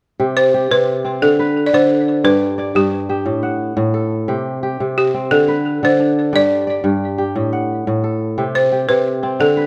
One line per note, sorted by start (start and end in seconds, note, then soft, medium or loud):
0.20 0.70 C3 medium
0.20 0.54 G4 medium
0.37 0.72 C5 medium
0.54 1.95 G4 medium
0.71 1.27 C3 medium
0.71 1.24 B4 medium
1.04 1.45 C4 medium
1.22 1.72 D3 medium
1.22 1.67 A4 medium
1.39 2.62 B4 medium
1.66 1.73 D5 medium
1.73 2.29 D3 medium
1.73 2.26 C5 medium
2.24 2.74 G2 medium
2.24 2.72 B4 medium
2.24 2.57 D5 medium
2.58 3.69 D5 medium
2.75 3.31 G2 medium
2.75 3.74 G4 medium
3.09 3.49 G4 medium
3.26 3.75 A2 medium
3.43 4.34 F#5 medium
3.77 4.33 A2 medium
3.94 5.26 A4 medium
4.28 4.79 C3 medium
4.28 4.62 G4 medium
4.63 6.04 G4 medium
4.80 5.36 C3 medium
4.98 5.32 G4 medium
5.14 5.54 C4 medium
5.31 5.82 D3 medium
5.31 5.83 A4 medium
5.48 6.71 B4 medium
5.83 6.38 D3 medium
5.83 6.36 C5 medium
5.99 7.67 D4 medium
6.33 6.83 G2 medium
6.33 6.67 D5 medium
6.33 7.67 D5 medium
6.67 7.78 D5 medium
6.84 7.40 G2 medium
7.18 7.59 G4 medium
7.36 7.86 A2 medium
7.53 8.44 F#5 medium
7.87 8.42 A2 medium
8.04 9.35 A4 medium
8.38 8.88 C3 medium
8.38 8.72 G4 medium
8.55 8.90 C5 medium
8.72 9.67 G4 medium
8.89 9.45 C3 medium
8.89 9.36 B4 medium
9.23 9.63 C4 medium
9.40 9.67 D3 medium
9.40 9.67 A4 medium
9.57 9.67 B4 medium